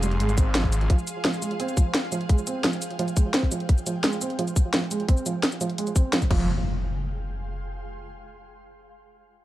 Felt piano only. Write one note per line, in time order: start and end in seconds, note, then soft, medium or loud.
0.03 0.11 G3 medium
0.20 0.28 G#3 medium
0.38 0.49 C4 medium
0.55 0.60 F3 medium
0.90 0.95 F3 medium
1.25 1.30 F3 medium
1.42 1.50 G#3 medium
1.60 1.71 C4 medium
1.77 1.82 F3 medium
2.12 2.17 F3 medium
2.29 2.37 G#3 medium
2.47 2.59 C4 medium
2.64 2.69 F3 medium
2.99 3.04 F3 medium
3.17 3.25 G#3 medium
3.34 3.46 C4 medium
3.52 3.56 F3 medium
3.87 3.91 F3 medium
4.04 4.12 G#3 medium
4.21 4.33 C4 medium
4.39 4.43 F3 medium
4.74 4.78 F3 medium
4.91 4.99 G#3 medium
5.09 5.20 C4 medium
5.26 5.31 F3 medium
5.61 5.66 F3 medium
5.78 5.86 G#3 medium
5.96 6.08 C4 medium
6.13 6.18 F3 medium
6.31 6.47 F3 medium